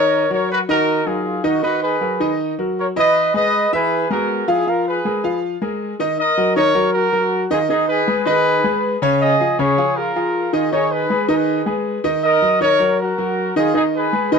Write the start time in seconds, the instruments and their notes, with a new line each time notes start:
Already playing: grand piano D#3 D#4 D#5, trumpet section A#4 C#5
0.30 grand piano F#3 F#4 A#4, trumpet section A#4 C#5
0.52 trumpet section F#4 B4
0.69 grand piano D#3 D#4 D#5, trumpet section F#4 A#4
1.07 grand piano F#3 D#4 A#4, trumpet section F4 G#4
1.44 grand piano D#3 D#4 D#5, trumpet section D#4 F#4
1.63 grand piano D#3 D#4 D#5, trumpet section F#4 B4
1.83 trumpet section G#4 B4
2.01 grand piano F#3 F#4 A#4
2.20 grand piano D#3 D#4 D#5
2.58 grand piano F#3 F#4 A#4
2.78 trumpet section A#4 C#5
2.96 grand piano E3 E4 D#5, trumpet section B4 D#5
3.34 grand piano G#3 G#4 B4, trumpet section B4 D#5
3.73 grand piano E3 E4 E5, trumpet section G#4 B4
4.10 grand piano G#3 B3 G#4, trumpet section F#4 A#4
4.48 grand piano F3 F4 F5, trumpet section E4 G#4
4.67 grand piano F3 F4 F5, trumpet section F4 A#4
4.88 trumpet section G#4 B4
5.05 grand piano G#3 G#4 A#4
5.24 grand piano F3 F4 F5
5.62 grand piano G#3 G#4 A#4
5.99 grand piano D#3 D#4 D#5
6.19 trumpet section A#4 D#5
6.37 grand piano F#3 F#4 A#4
6.56 grand piano D#3 D#4 D#5, trumpet section A#4 C#5
6.75 grand piano F#3 F#4 A#4
6.93 trumpet section F#4 A#4
7.12 grand piano F#3 F#4 A#4
7.51 grand piano D#3 D#4 D#5, trumpet section F4 G#4
7.69 grand piano D#3 D#4 D#5, trumpet section D#4 G#4
7.88 trumpet section G#4 B4
8.08 grand piano G#3 G#4 B4
8.26 grand piano D#3 D#4 D#5, trumpet section G#4 B4
8.64 grand piano G#3 G#4 B4
9.02 grand piano C#3 C#4 C#5
9.21 trumpet section G#4 D#5
9.40 grand piano F3 F4 G#4
9.59 grand piano C#3 C#4 C#5, trumpet section G#4 C#5
9.78 grand piano F3 F4 G#4
9.97 trumpet section F4 A#4
10.16 grand piano F3 F4 G#4
10.53 grand piano D#3 D#4 D#5, trumpet section F4 G#4
10.72 grand piano D#3 D#4 D#5, trumpet section G#4 C#5
10.91 trumpet section G#4 B4
11.10 grand piano G#3 G#4 B4
11.28 grand piano D#3 D#4 D#5, trumpet section G#4 B4
11.66 grand piano G#3 G#4 B4
12.04 grand piano D#3 D#4 D#5
12.24 trumpet section A#4 D#5
12.42 grand piano F#3 F#4 A#4
12.61 grand piano D#3 D#4 D#5, trumpet section A#4 C#5
12.80 grand piano F#3 F#4 A#4
13.01 trumpet section F#4 A#4
13.18 grand piano F#3 F#4 A#4
13.56 grand piano D#3 D#4 D#5, trumpet section F4 G#4
13.74 grand piano D#3 D#4 D#5, trumpet section D#4 G#4
13.96 trumpet section G#4 B4
14.13 grand piano G#3 G#4 B4
14.32 grand piano D#3 D#4 D#5, trumpet section G#4 B4